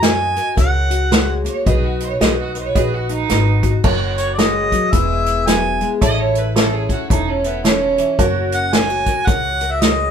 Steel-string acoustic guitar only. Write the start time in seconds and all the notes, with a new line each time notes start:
Already playing: F#4 A#4
0.02 C#4
0.36 A#4
0.56 C#3 A#4
0.90 F#4
1.11 G#3
1.45 A#3
1.66 B2 D#4 F#4 B4
2.21 F#3
2.55 B4
2.76 F#4
3.09 D#4
3.29 F#3
3.63 F#4
3.84 F#3 A#4
4.38 G#3
4.72 F#3
4.93 E3 G#3 B3 E4 G#4
5.47 F#3
5.81 G#3
6.01 A2 E4
6.56 A3 C#4
6.90 A4
7.10 E3
7.45 E4
7.64 D#3
7.98 E3
8.19 F#3 C#4 F#4 A#4
8.73 C#4 D#4
8.90 F#4
9.07 A#4
9.28 C#3
9.61 A#4
9.82 G#3